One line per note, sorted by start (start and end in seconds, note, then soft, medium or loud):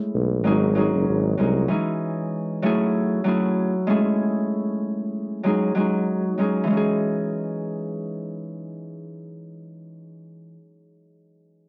0.00 0.43 G#3 medium
0.00 0.50 A3 medium
0.00 0.45 C#4 medium
0.00 0.52 E4 medium
0.00 0.46 G#4 loud
0.14 0.47 B1 medium
0.43 0.89 G#1 loud
0.43 0.73 F#3 medium
0.43 0.74 G#3 medium
0.43 0.71 C#4 medium
0.43 0.71 D#4 medium
0.43 0.72 G#4 medium
0.75 1.36 F#3 medium
0.75 1.37 G#3 medium
0.75 1.20 C#4 medium
0.75 1.21 D#4 medium
0.75 1.21 G#4 medium
0.94 1.06 F#1 medium
1.08 1.35 G#1 medium
1.37 1.67 C2 medium
1.37 1.75 F#3 medium
1.37 1.68 G#3 medium
1.37 1.62 C#4 medium
1.37 1.62 D#4 medium
1.37 1.62 G#4 medium
1.68 2.69 E3 medium
1.68 2.69 G#3 medium
1.68 2.64 C#4 medium
1.68 2.71 D#4 medium
1.68 2.65 G#4 medium
2.62 3.23 F#3 medium
2.62 3.15 A3 medium
2.62 3.16 C#4 medium
2.62 3.16 E4 medium
2.62 3.16 G#4 loud
3.24 3.94 F#3 medium
3.24 3.70 A3 medium
3.24 3.70 C#4 medium
3.24 3.70 E4 medium
3.24 3.71 G#4 medium
3.87 5.43 G#3 loud
3.87 5.50 A3 medium
3.87 5.44 C#4 medium
3.87 5.52 E4 medium
3.87 5.46 G#4 loud
5.43 5.73 F#3 medium
5.43 5.74 G#3 medium
5.43 5.71 C#4 medium
5.43 5.71 D#4 medium
5.43 5.72 G#4 medium
5.75 6.36 F#3 medium
5.75 6.37 G#3 medium
5.75 6.20 C#4 medium
5.75 6.21 D#4 medium
5.75 6.21 G#4 medium
6.37 6.75 F#3 medium
6.37 6.66 G#3 medium
6.37 6.62 C#4 medium
6.37 6.62 D#4 medium
6.37 6.62 G#4 medium
6.63 10.53 E3 medium
6.63 10.12 G#3 medium
6.70 10.16 C#4 medium
6.70 10.19 D#4 medium
6.77 10.22 G#4 medium